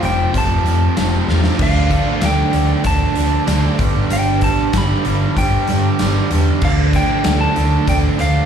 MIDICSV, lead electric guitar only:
0, 0, Header, 1, 2, 480
1, 0, Start_track
1, 0, Tempo, 628931
1, 1215, Time_signature, 4, 2, 24, 8
1, 6453, End_track
2, 0, Start_track
2, 0, Title_t, "Lead electric guitar"
2, 0, Program_c, 0, 29
2, 40, Note_on_c, 0, 79, 94
2, 251, Note_off_c, 0, 79, 0
2, 288, Note_on_c, 0, 81, 108
2, 961, Note_off_c, 0, 81, 0
2, 1240, Note_on_c, 0, 77, 83
2, 1720, Note_on_c, 0, 79, 98
2, 1721, Note_off_c, 0, 77, 0
2, 2157, Note_off_c, 0, 79, 0
2, 2187, Note_on_c, 0, 81, 108
2, 2870, Note_off_c, 0, 81, 0
2, 3152, Note_on_c, 0, 79, 107
2, 3385, Note_off_c, 0, 79, 0
2, 3388, Note_on_c, 0, 81, 101
2, 3628, Note_off_c, 0, 81, 0
2, 3645, Note_on_c, 0, 83, 106
2, 4079, Note_off_c, 0, 83, 0
2, 4107, Note_on_c, 0, 79, 96
2, 4790, Note_off_c, 0, 79, 0
2, 5074, Note_on_c, 0, 77, 104
2, 5136, Note_off_c, 0, 77, 0
2, 5312, Note_on_c, 0, 79, 112
2, 5639, Note_off_c, 0, 79, 0
2, 5654, Note_on_c, 0, 81, 112
2, 6022, Note_off_c, 0, 81, 0
2, 6025, Note_on_c, 0, 79, 103
2, 6088, Note_off_c, 0, 79, 0
2, 6265, Note_on_c, 0, 77, 96
2, 6453, Note_off_c, 0, 77, 0
2, 6453, End_track
0, 0, End_of_file